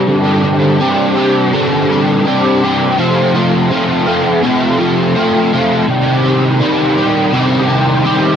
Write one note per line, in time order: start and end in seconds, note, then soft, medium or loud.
0.07 0.80 G2 medium
0.07 0.80 D3 medium
0.07 0.44 G3 medium
0.07 0.44 C4 medium
0.07 0.43 D4 medium
0.07 0.42 G4 medium
0.43 0.79 G3 medium
0.43 0.80 C4 medium
0.43 0.80 D4 medium
0.43 0.81 G4 medium
0.80 1.17 G3 medium
0.80 1.17 C4 medium
0.80 1.15 D4 medium
0.80 1.15 G4 medium
1.16 1.53 G3 medium
1.16 1.53 C4 medium
1.16 1.53 D4 medium
1.16 1.53 G4 medium
1.53 2.25 G2 medium
1.53 2.25 D3 loud
1.53 1.90 G3 medium
1.53 1.90 C4 loud
1.53 1.88 D4 loud
1.53 1.88 G4 loud
1.89 2.24 G3 medium
1.89 2.26 C4 medium
1.89 2.26 D4 medium
1.89 2.27 G4 medium
2.25 2.63 G3 medium
2.25 2.64 C4 medium
2.25 2.63 D4 medium
2.25 2.62 G4 medium
2.63 2.97 G3 medium
2.63 2.99 C4 medium
2.63 2.97 D4 medium
2.63 2.96 G4 medium
2.98 3.70 F2 medium
2.98 3.70 C3 medium
2.98 3.34 F3 medium
2.98 3.34 A3 medium
2.98 3.34 C4 loud
2.98 3.33 F4 loud
3.34 3.69 F3 medium
3.34 3.70 A3 medium
3.34 3.71 C4 medium
3.34 3.71 F4 medium
3.70 4.06 F3 medium
3.70 4.06 A3 medium
3.70 4.06 C4 medium
3.70 4.05 F4 medium
4.06 4.43 F3 medium
4.06 4.43 A3 medium
4.06 4.43 C4 medium
4.06 4.44 F4 medium
4.43 5.15 F2 medium
4.43 5.15 C3 loud
4.43 4.79 F3 medium
4.43 4.79 A3 loud
4.43 4.78 C4 loud
4.43 4.77 F4 loud
4.78 5.14 F3 medium
4.78 5.14 A3 medium
4.78 5.15 C4 medium
4.78 5.16 F4 medium
5.15 5.53 F3 medium
5.15 5.52 A3 medium
5.15 5.52 C4 medium
5.15 5.51 F4 medium
5.52 5.86 F3 medium
5.52 5.86 A3 medium
5.52 5.86 C4 medium
5.52 5.85 F4 medium
5.88 6.59 C3 loud
5.88 6.59 D#3 medium
5.88 6.25 G3 medium
5.88 6.24 C4 medium
5.88 6.23 G4 loud
6.24 6.60 G3 medium
6.24 6.60 C4 medium
6.24 6.61 G4 medium
6.61 7.32 D#3 medium
6.61 6.97 G3 medium
6.61 6.97 C4 medium
6.61 6.96 G4 medium
6.97 7.32 G3 medium
6.97 7.32 C4 medium
6.97 7.33 G4 medium
7.33 8.04 C3 medium
7.33 8.03 D#3 loud
7.33 7.69 G3 loud
7.33 7.68 C4 loud
7.33 7.67 G4 loud
7.68 8.04 G3 medium
7.68 8.04 C4 medium
7.68 8.05 G4 medium
8.04 8.36 D#3 medium
8.04 8.36 G3 medium
8.04 8.36 C4 medium
8.04 8.36 G4 medium